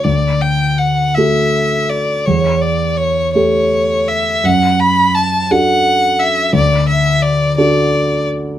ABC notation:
X:1
M:6/8
L:1/8
Q:3/8=56
K:D
V:1 name="Violin"
d g f e2 d | c d c c2 e | f b a f2 e | d e d d2 z |]
V:2 name="Grand piano"
D,,3 [A,FA]3 | E,,3 [A,GA]3 | F,,3 [DFA]3 | D,,3 [DFA]3 |]